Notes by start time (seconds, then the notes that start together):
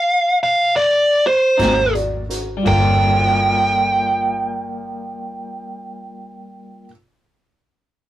Already playing: F5
0.43 F5
0.76 D5
1.27 C5
1.57 G#1 G#2 F#3 C4 D#4 F#4 A#4 C5, kick, snare, closed hi-hat
1.94 F#4 A#4 D5, closed hi-hat
2.29 F#4 A#4 C5, closed hi-hat
2.57 G3
2.63 G1 A#3 F4 A4, kick, crash
2.67 A#4 G5
2.73 F4